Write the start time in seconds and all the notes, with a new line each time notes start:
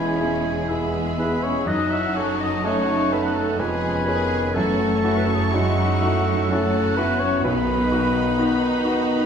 Already playing: E1 E2 E3 G#3 B3 C#4 E4 G#4 E5 G#5 B5
0.21 E4 G#4
0.68 G#3 B3 E4 G#4 E5 B5
1.18 B3 E4 G#4 B4 B5
1.43 C#4 C#5 C#6
1.66 F#1 F#2 F#3 D#4 F#4 D#5 F#5 A5 D#6
1.91 E4 E5 E6
2.16 C#4 A4 C#5 C#6
2.39 D#4 D#5 D#6
2.63 A3 C#4 F#4 A4 C#5 F#5 C#6
3.10 B3 C#4 A4 B4 B5
3.34 A3 A4 A5
3.58 F1 F2 G#3 B3 C#4 G#4 B4 G#5 B5
4.05 D#3 C#4 G#4
4.54 F#1 F#2 E3 A3 C#4 F#4 A4 A5 C#6
5.02 F#3 E4 F#4
5.17 B4
5.26 A4
5.35 G#4
5.43 A4
5.52 F#3 G#3 C#4 D#4 E4 F#4 E5 F#5
6.03 A3 E4 F#4
6.50 F#3 A3 C#4 E4 F#4 A4 F#5 A5
6.97 B3 E4 F#4 B4 B5
7.19 C#4 C#5 C#6
7.42 B1 B2 D#3 B3 D#4 B4 B5
7.68 D#4
7.91 D#4 F#4
8.16 D#4
8.38 B3 D#4 F#4
8.62 D#4
8.84 D#4 F#4
9.08 D#4